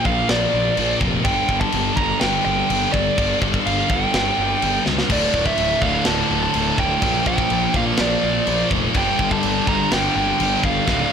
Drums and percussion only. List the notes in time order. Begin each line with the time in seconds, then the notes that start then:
0.05 kick
0.29 snare, crash
0.77 crash
1.01 kick
1.25 kick, crash
1.49 kick
1.61 kick
1.72 crash
1.97 kick
2.21 snare, crash
2.70 crash
2.94 kick
3.18 kick, crash
3.42 kick
3.54 kick
3.67 crash
3.90 kick
4.14 snare, crash
4.62 crash
4.86 snare
4.98 snare
5.10 kick, crash
5.34 kick
5.46 kick
5.58 crash
5.82 kick
6.05 snare, crash
6.54 crash
6.78 kick
7.02 kick, crash
7.26 kick
7.38 kick
7.50 crash
7.74 kick
7.97 snare, crash
8.47 crash
8.71 kick
8.94 kick, crash
9.19 kick
9.31 kick
9.43 crash
9.67 kick
9.91 snare, crash
10.40 crash
10.63 kick
10.88 kick, snare
10.99 high tom